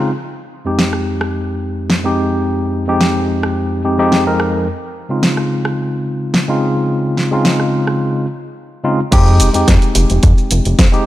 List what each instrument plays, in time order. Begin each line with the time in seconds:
Already playing: tine electric piano G#3 C4 D#4 F4
0.65 tine electric piano F2 G#3 C4 D#4 G4
0.79 snare
0.93 cross-stick
1.21 cross-stick
1.90 snare
2.04 tine electric piano F2 G#3 C4 D#4 G4
2.87 tine electric piano F2 G#3 C4 D#4 G4
3.01 snare
3.43 cross-stick
3.84 tine electric piano F2 G#3 C4 D#4 G4
3.99 tine electric piano F2 G#3 C4 D#4 G4
4.12 snare
4.26 tine electric piano F2 G#3 C4 D#4 A#4
4.40 cross-stick
5.09 tine electric piano C#3 G#3 C4 D#4 F4
5.23 snare
5.37 cross-stick
5.65 cross-stick
6.34 snare
6.48 tine electric piano C#3 G#3 C4 D#4 F4
7.17 snare
7.31 tine electric piano C#3 G#3 C4 D#4 F4
7.45 snare
7.60 cross-stick
7.87 cross-stick
8.84 tine electric piano C#3 G#3 C4 D#4 F4
9.11 analog synth bass F2, tine electric piano G#3 C4 D#4 G4, kick, closed hi-hat, crash, shaker
9.27 shaker
9.40 analog synth bass F1, open hi-hat, shaker
9.53 analog synth bass F2, tine electric piano G#3 C4 D#4 G4, closed hi-hat, shaker
9.68 analog synth bass F2, kick, snare, closed hi-hat, shaker
9.82 closed hi-hat, shaker
9.95 analog synth bass F1, open hi-hat, shaker
10.10 analog synth bass F1, closed hi-hat, shaker
10.23 analog synth bass F2, kick, closed hi-hat, shaker
10.38 shaker
10.51 analog synth bass F1, open hi-hat, shaker
10.65 analog synth bass F1, closed hi-hat, shaker
10.79 analog synth bass F2, kick, snare, closed hi-hat, shaker
10.92 tine electric piano G#3 C4 D#4 G4, shaker